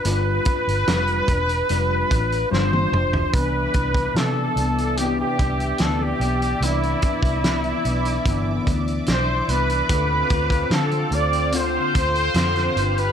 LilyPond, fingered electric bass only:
\new Staff \with { instrumentName = "Fingered electric bass" } { \clef bass \time 4/4 \key c \major \tempo 4 = 73 g,,8 r16 g,,16 f,,8 e,,8 f,,8 a,,8 g,,8 f,,8 | c,8 c,8 c8 c,4 c,8 d,8 b,,8 | c,8 r16 c,8. b,,8 g,,8 d,8 b,,8 c,8 | d,8 d,8 d8 d,4 d,8 f,8 g,,8 | }